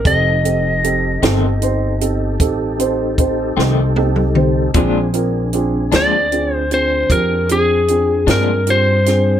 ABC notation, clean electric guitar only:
X:1
M:12/8
L:1/8
Q:3/8=51
K:Bb
V:1 name="Clean electric guitar" clef=bass
z3 [F,,E,A,C] z4 z [F,,E,A,C] z2 | [B,,F,_A,D] z2 [B,,F,A,D] z4 z [B,,F,A,D] z2 |]